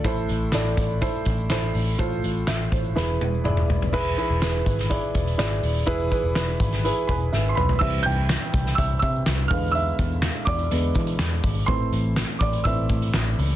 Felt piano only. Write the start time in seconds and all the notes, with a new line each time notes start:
0.04 A2 E4 A4 C5
0.53 E4 A4 D5
1.01 E4 A4 C5
1.50 E4 A4 C5
1.98 A2 F4 A4 C5
2.48 E5
2.72 C5
2.95 E3 E4 G#4 B4
3.44 E4 G#4 D5
3.92 E3 E4 G#4 B4
4.17 E4 G#4 B4
4.41 E4 G#4 B4
4.89 E4 G#4 D5
5.37 E4 G#4 D5
5.86 E3 E4 G#4 B4
6.11 E4 G#4 B4
6.35 E4 G#4 B4
6.84 E4 G#4 B4
7.07 B4 G#5 B5
7.32 E5
7.49 C6
7.55 B4 B5
7.79 E3 G3 C4 E5 E6
8.03 G5 G6
8.75 E5 E6
8.99 E5 E6
9.48 D3 G#3 B3 F5 F6
9.72 E5 E6
10.45 D5 D6
10.71 D3 G#3 B3
11.66 E3 A3 C4 C5 C6
12.39 D5 D6
12.64 E3 A3 C4 E5 E6